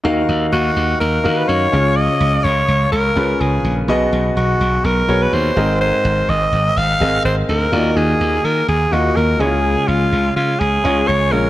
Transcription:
X:1
M:4/4
L:1/16
Q:"Swing 16ths" 1/4=125
K:Ebm
V:1 name="Alto saxophone"
z4 G4 B3 c d4 | e4 d4 B4 A3 z | z4 ^F4 B3 =B =c4 | =c4 e4 f4 c2 B2- |
B2 A4 B2 A2 G2 B2 A2- | A2 F4 F2 A4 d2 B2 |]
V:2 name="Grand piano"
[E,EGBf]6 z4 [EGBf]4 [D,DFAf]2- | [D,DFAf]4 z6 [DFAc]4 z2 | [=B,,=B,^F^G^d]6 z4 [B,FG_d]4 [A,,=CA_Be]2- | [A,,=CABe]4 z6 [CABe]4 z2 |
[E,B,FG=de]6 z4 [B,FGe]2 z2 [_D,A,D_F=F_d]2- | [D,A,D_F=Fd]4 z6 [A,DFd]2 z2 [A,DFd]2 |]
V:3 name="Slap bass" clef=bass
E,,2 E,,2 E,,2 E,,2 E,,2 E,,2 G,,2 D,,2- | D,,2 D,,2 D,,2 D,,2 D,,2 D,,2 D,,2 B,,,2 | =B,,,2 B,,,2 B,,,2 B,,,2 B,,,2 B,,,2 ^D,,2 A,,,2- | A,,,2 A,,,2 A,,,2 A,,,2 A,,,2 A,,,2 A,,,2 =D,,2 |
E,,2 E,,2 E,,2 E,2 E,,2 E,,2 E,,2 D,,2- | D,,2 D,,2 D,,2 D,2 D,,2 D,,2 D,,2 B,,,2 |]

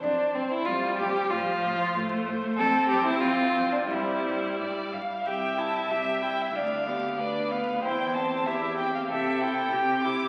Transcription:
X:1
M:2/4
L:1/16
Q:1/4=94
K:F
V:1 name="Violin"
c2 c2 c2 c2 | c2 c2 c2 c2 | [K:C] c2 c2 c2 c2 | c2 c2 d2 f2 |
g2 a2 e2 g e | f4 d2 f2 | g2 a2 e2 g f | e2 g4 d'2 |]
V:2 name="Violin"
D2 C E F2 G2 | F6 z2 | [K:C] A2 G E F3 D | E6 z2 |
e8 | d2 G2 B4 | c4 G4 | A4 G4 |]
V:3 name="Viola"
z4 G,4 | F,4 A,4 | [K:C] C8 | G,6 z2 |
G2 E2 G2 E2 | D2 B,2 D2 B,2 | E2 C2 E2 C2 | G2 E2 G2 E2 |]
V:4 name="Cello" clef=bass
F,,2 F,,2 F,,2 F,,2 | A,,2 A,,2 A,,2 A,,2 | [K:C] F,,2 F,,2 F,,2 F,,2 | G,,2 G,,2 G,,2 G,,2 |
C,,4 C,,4 | D,,4 D,,4 | E,,4 E,,4 | C,4 C,4 |]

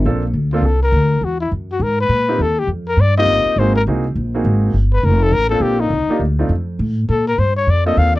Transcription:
X:1
M:4/4
L:1/8
Q:"Swing" 1/4=205
K:Bb
V:1 name="Trumpet"
z3 F A B3 | _G =E z G B =B3 | A G z B d e3 | c B z6 |
z _c B A B A G E- | E2 z6 | A B c _d =d e f d |]
V:2 name="Grand piano"
[B,CDFA] z2 [B,CDFA] z4 | z6 z [B,CEFG] | z4 z [B,CEFG]3 | [B,CE_G_A] z [B,CEGA] z2 [B,CEGA]3 |
z4 z [B,CDFA]3 | z [B,DEFG] z [A,CDEF] z4 | z4 z [B,CDFA]3 |]
V:3 name="Upright bass" clef=bass
B,,,2 D,,2 C,,2 D,,2 | =E,,2 _G,,2 ^G,,2 B,,2 | E,,2 F,,2 G,,2 G,,, z | _A,,,2 C,,2 B,,,2 A,,,2 |
G,,,2 F,,,2 A,,,2 B,,,2 | C,, z D,,2 F,,2 A,,2 | B,,2 G,,2 F,,2 E,,2 |]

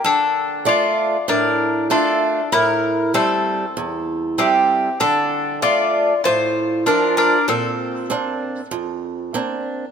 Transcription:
X:1
M:4/4
L:1/8
Q:1/4=97
K:Dm
V:1 name="Bouzouki"
A2 d2 B2 A2 | B2 A4 G2 | A2 d2 c2 B B | A6 z2 |]
V:2 name="Mandolin"
D2 F2 D2 D2 | E2 C4 C2 | D2 F2 F2 D D | C6 z2 |]
V:3 name="Steel-string acoustic guitar"
D,2 [A,DF]2 A,,2 [A,DF]2 | A,,2 [G,A,C]2 E,,2 [G,A,C]2 | D,2 [A,DF]2 A,,2 [F,DF]2 | B,,2 [B,CD]2 F,,2 [B,CD]2 |]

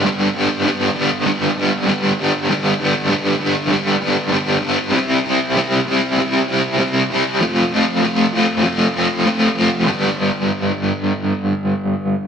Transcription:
X:1
M:4/4
L:1/8
Q:1/4=98
K:Gmix
V:1 name="Overdriven electric guitar" clef=bass
[G,,D,G,B,D] [G,,D,G,B,D] [G,,D,G,B,D] [G,,D,G,B,D] [G,,D,G,B,D] [G,,D,G,B,D] [G,,D,G,B,D] [G,,D,G,B,D] | [G,,D,G,B,D] [G,,D,G,B,D] [G,,D,G,B,D] [G,,D,G,B,D] [G,,D,G,B,D] [G,,D,G,B,D] [G,,D,G,B,D] [G,,D,G,B,D] | [C,G,CE] [C,G,CE] [C,G,CE] [C,G,CE] [C,G,CE] [C,G,CE] [C,G,CE] [C,G,CE] | [F,A,CF] [F,A,CF] [F,A,CF] [F,A,CF] [F,A,CF] [F,A,CF] [F,A,CF] [F,A,CF] |
[G,,D,G,B,D]8 |]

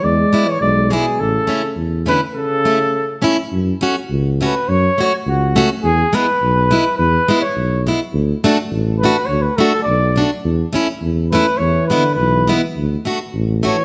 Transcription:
X:1
M:2/4
L:1/16
Q:"Swing" 1/4=104
K:A
V:1 name="Flugelhorn"
d3 c d2 G2 | A4 z2 B2 | A6 z2 | z6 B2 |
c2 c2 F3 z | G2 B6 | B3 c3 z2 | z6 B2 |
c B A2 d3 z | z6 B2 | c2 B2 B3 z | z6 c2 |]
V:2 name="Steel-string acoustic guitar"
z2 [G,B,E]2 z2 [G,B,E]2 | z2 [A,CE]2 z2 [A,CE]2 | z2 [A,CE]2 z2 [A,CE]2 | z2 [A,CF]2 z2 [A,CF]2 |
z2 [A,CF]2 z2 [A,CF]2 | z2 [G,B,E]2 z2 [G,B,E]2 | z2 [G,B,E]2 z2 [G,B,E]2 | z2 [A,DF]2 z2 [A,DF]2 |
z2 [A,DF]2 z2 [A,DF]2 | z2 [A,CE]2 z2 [A,CE]2 | z2 [G,B,E]2 z2 [G,B,E]2 | z2 [A,DF]2 z2 [A,DF]2 |]
V:3 name="Euphonium" clef=bass
G,3 E, G,2 B,,2 | C,4 z2 D,2 | C,6 z2 | z8 |
z8 | z8 | z8 | z8 |
z8 | z8 | E,2 D,2 E,3 z | z6 E,2 |]
V:4 name="Tuba" clef=bass
E,,2 z2 B,,,4 | A,,,2 z2 E,,4 | z8 | F,,2 z2 C,,4 |
F,,2 z2 C,,4 | E,,2 z2 B,,,4 | E,,2 z2 B,,,4 | D,,2 z2 A,,,4 |
D,,2 z2 B,,,4 | E,,2 z2 E,,4 | E,,2 z2 B,,,4 | D,,2 z2 A,,,4 |]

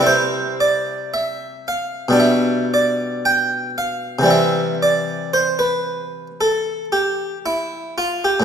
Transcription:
X:1
M:4/4
L:1/16
Q:1/4=57
K:C
V:1 name="Harpsichord"
c2 d2 e2 f2 e2 d2 g2 f2 | e2 d2 c B3 A2 G2 E2 F G |]
V:2 name="Harpsichord" clef=bass
[C,G,CE]8 [B,,G,D]8 | [C,E,G,C]16 |]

